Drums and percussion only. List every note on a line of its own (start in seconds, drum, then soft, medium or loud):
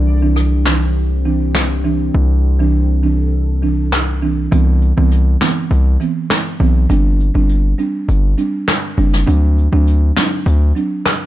0.36 cross-stick medium
0.66 snare loud
0.66 clap medium
1.55 cross-stick medium
1.55 snare loud
1.55 clap medium
3.92 cross-stick medium
3.92 snare loud
3.92 clap medium
4.52 closed hi-hat medium
4.82 closed hi-hat soft
5.11 closed hi-hat medium
5.41 snare loud
5.41 clap medium
5.41 closed hi-hat medium
5.71 closed hi-hat medium
6.00 closed hi-hat medium
6.30 cross-stick medium
6.30 snare loud
6.30 clap medium
6.60 closed hi-hat soft
6.90 closed hi-hat medium
7.20 closed hi-hat soft
7.49 closed hi-hat medium
7.79 closed hi-hat medium
8.09 closed hi-hat medium
8.38 closed hi-hat medium
8.68 cross-stick medium
8.68 snare loud
8.68 clap medium
8.68 closed hi-hat medium
8.97 closed hi-hat soft
9.13 snare medium
9.28 closed hi-hat medium
9.57 closed hi-hat soft
9.87 closed hi-hat medium
10.17 snare loud
10.17 clap medium
10.17 closed hi-hat medium
10.47 closed hi-hat medium
10.76 closed hi-hat medium
11.06 cross-stick medium
11.06 snare loud
11.06 clap medium